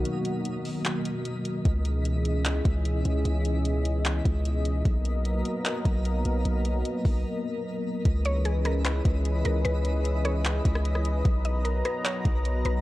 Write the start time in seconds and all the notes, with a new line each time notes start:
Already playing: B2 D#3 F#3 A#3 F#4 D#5 B6
0.05 closed hi-hat
0.25 closed hi-hat
0.45 closed hi-hat
0.65 open hi-hat
0.85 clap, closed hi-hat
1.05 closed hi-hat
1.25 closed hi-hat
1.45 closed hi-hat
1.65 C#2 E3 C#4 E4 G#4 D#5, kick, closed hi-hat
1.85 closed hi-hat
2.05 closed hi-hat
2.25 closed hi-hat
2.45 clap, closed hi-hat
2.65 C#2, kick, closed hi-hat
2.85 closed hi-hat
3.05 C#2, closed hi-hat
3.25 C#2, closed hi-hat
3.45 closed hi-hat
3.65 closed hi-hat
3.85 closed hi-hat
4.05 clap, closed hi-hat
4.25 C#2, kick, closed hi-hat
4.45 closed hi-hat
4.65 closed hi-hat
4.85 B1 F#3 A#3 B3 A#4 D#5, kick, closed hi-hat
5.05 closed hi-hat
5.25 closed hi-hat
5.45 closed hi-hat
5.65 clap, closed hi-hat
5.85 B1, kick, closed hi-hat
6.05 closed hi-hat
6.25 B1, closed hi-hat
6.45 B1, closed hi-hat
6.65 closed hi-hat
6.85 closed hi-hat
7.05 B1, kick, open hi-hat
8.05 C#2 E3 C#4 E4 G#4 B4 D#5 B5, kick, closed hi-hat
8.25 C#5, closed hi-hat
8.45 G#4, closed hi-hat
8.65 A#4, cross-stick, closed hi-hat
8.85 B4, clap, closed hi-hat
9.05 C#2, kick, closed hi-hat
9.25 closed hi-hat
9.45 C#2 A#4, closed hi-hat
9.65 C#2 B4, closed hi-hat
9.85 closed hi-hat
10.05 closed hi-hat
10.25 C#5, cross-stick, closed hi-hat
10.45 clap, closed hi-hat
10.65 C#2, kick, closed hi-hat
10.75 cross-stick
10.85 closed hi-hat
10.95 cross-stick
11.05 closed hi-hat
11.25 B1 F#3 B3 B4 D#5 A#5, kick, closed hi-hat
11.45 D#5, closed hi-hat
11.65 A#4, closed hi-hat
11.85 B4, cross-stick, closed hi-hat
12.05 C#5, clap, closed hi-hat
12.25 B1, kick, closed hi-hat
12.45 closed hi-hat
12.65 B1 B4, closed hi-hat